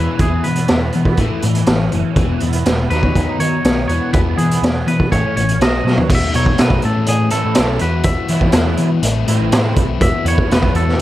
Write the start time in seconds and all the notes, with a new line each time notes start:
Already playing: E2 B2 E3 B4
0.19 E2 B2 E3 G#4, kick, closed hi-hat
0.44 E2 B2 E3 B3 B4, closed hi-hat
0.55 closed hi-hat
0.68 E2 B2 E3, snare, closed hi-hat
0.93 E2 B2 E3 B3, closed hi-hat
1.05 kick
1.17 A1 A2 E3 A3, kick, closed hi-hat
1.42 A2 E3, closed hi-hat
1.55 closed hi-hat
1.66 A1 A2 E3 C#4, snare, closed hi-hat
1.92 F#1 A2 E3, closed hi-hat
2.16 E1 E2 B2 E3, kick, closed hi-hat
2.40 E2 B2 B3, closed hi-hat
2.53 closed hi-hat
2.65 E1 E2 B2 E3, snare, closed hi-hat
2.90 D#2 D#3 F#3 B3 D#4 B4, snare, closed hi-hat
3.03 kick
3.15 D#2 D#3 B3 D#4, kick, closed hi-hat
3.39 D#3 F#3 B3 C#5, closed hi-hat
3.64 B1 D#3 B3 D#4, snare, closed hi-hat
3.88 E2 B2 E3 B3 C#5, closed hi-hat
4.13 E2 B2 E3 B3 B4, kick, closed hi-hat
4.38 E2 B2 E3 E4 G#4, closed hi-hat
4.51 closed hi-hat
4.62 E2 B2 B3, snare, closed hi-hat
4.87 E2 B2 E3 B3 B4, closed hi-hat
5.00 kick
5.12 A1 A2 E3 A3 C#4 C#5, kick, closed hi-hat
5.36 A1 A2 E3 C#4 C#5, closed hi-hat
5.49 closed hi-hat
5.59 B1 B2 F#3 B3 D#5, snare, closed hi-hat
5.84 B2 F#3, snare
5.97 floor tom
6.09 B2 F#3 A3 D#4 F#4, kick, crash
6.15 E5
6.34 B2 F#3 A3 B3 D#4 F#4 A4 C#5, closed hi-hat
6.46 kick
6.58 B2 F#3 A3 B3 D#4 F#4 A4 B4, snare, closed hi-hat
6.70 kick
6.82 A2 E3 A3 C#4 A4, closed hi-hat
7.06 A2 G#4, closed hi-hat
7.30 A2 C#4 E4 A4, closed hi-hat
7.34 A3
7.45 A2
7.55 B1 E3 A3 C#4 E4, snare, closed hi-hat
7.59 A4
7.79 E2 B2 E3 B3 E4 F#4 B4, closed hi-hat
7.84 E2
8.03 E2 B2 E3 B3 E4 E5, kick, closed hi-hat
8.08 F#4
8.28 E3 F#3 B3 E4 F#4, closed hi-hat
8.41 kick
8.52 E2 B2 E3 F#3 B3 E4 F#4, snare, closed hi-hat
8.77 E3, closed hi-hat
9.02 A1 A2 E3 A3 C4 E4, closed hi-hat
9.27 A2 E3 A3 C4 E4, closed hi-hat
9.41 A1
9.51 A2 E3 A3 C4 E4, snare, closed hi-hat
9.76 B1 A3 C4 E4, kick, closed hi-hat
10.00 E1 E2 B2 E3 B3 E4 F#4 E5, kick, closed hi-hat
10.25 E2 E3 F#3 B3 E4 F#4 C#5, closed hi-hat
10.38 kick
10.49 E1 E2 B2 E3 F#3 B3 B4, snare, closed hi-hat
10.53 E4 F#4
10.63 kick
10.74 E2 A4, closed hi-hat
10.88 snare
10.98 E1